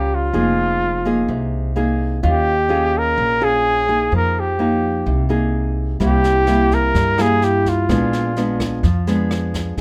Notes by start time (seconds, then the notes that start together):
Already playing: C#2 G3 C#4 F4 G4 A#4
0.15 F4
0.33 F1 F3 A#3 D#4 G#4
1.05 A#3 D#4 G#4
1.29 C2 C3
1.76 A#3 D#4 G#4
2.23 D#2 D#3 C#4 F4
2.28 G4
2.69 C#4 F4 G#4
2.98 A#4
3.17 A#1 A#2
3.41 C#4 F4 G#4
3.88 A#3 D#4 G#4
4.12 F2 F3 A#4
4.40 G4
4.59 A#3 D#4
5.06 C2 C3
5.29 A#3 D#4 G#4
6.00 C2 C3 G3 A#3 E4, kick, snare
6.05 G4
6.24 snare
6.47 G3 A#3 E4, cross-stick, snare
6.71 A#4, kick, snare
6.94 G2, kick, snare
7.17 G3 A#3 E4, cross-stick, snare
7.22 G#4
7.42 G4, snare
7.66 F4, kick, snare
7.89 A#1 A#2 G#3 B3 D4, kick, cross-stick, snare
8.13 snare
8.36 G#3 B3 D4, snare
8.60 kick, cross-stick, snare
8.83 F2 F3, kick, snare
9.07 G#3 B3 D4, snare
9.31 cross-stick, snare
9.54 kick, snare
9.77 snare